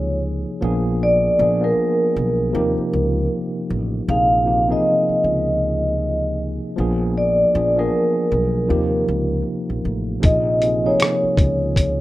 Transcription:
Already playing: C#2 C3 F3 A#3 D#4 G4 G#4 C#5
0.61 A#1 F3 A#3 B3 D4 G#4
1.03 D5
1.39 A#1 F3 A#3 B3 D4 G#4
1.61 F3 A#3 B3 D4 G#4 A#4
2.16 B1
2.53 D#2 C3 F3 A#3 D#4 G4
2.77 muted upright bass stroke
2.93 C#2
3.70 A1
4.08 A#1 C3 F3 A#3 D#4 G#4 F5
4.44 C3 F3 A#3 D#4 G4
4.68 C3 F3 A#3 D#4 G#4
4.72 D#5
5.09 muted upright bass stroke
5.24 C#2
6.76 A#1 F3 A#3 B3 D4 G#4
7.18 D5
7.54 A#1 F3 A#3 B3 D4 G#4
7.76 F3 A#3 B3 D4 G#4 A#4
8.32 B1
8.68 D#2 C3 F3 A#3 D#4 G4
9.08 C#2
9.70 A#1
9.85 A1
10.19 C3 F3 A#3 D#4 G#4, closed hi-hat
10.24 A#1 D#5, kick
10.60 C3 F3 A#3 D#4 G#4, closed hi-hat
10.83 C3 F3 A#3 D#4 G#4 C#5
11.00 cross-stick, closed hi-hat
11.23 muted upright bass stroke
11.37 C#2, kick, closed hi-hat
11.76 kick, closed hi-hat

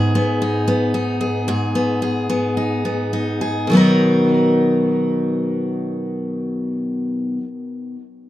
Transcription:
Already playing: G#2 B3 D#4 G#4
0.15 B3
0.42 D#4
0.68 B3
0.94 D#4
1.21 G#4
1.48 G#2 G#4
1.75 B3
2.02 G#4
2.30 B3
2.57 D#4
2.85 B3
3.13 D#4
3.41 G#4
3.67 B2 D#3
3.72 F#3 B3 D#4
3.77 A#4

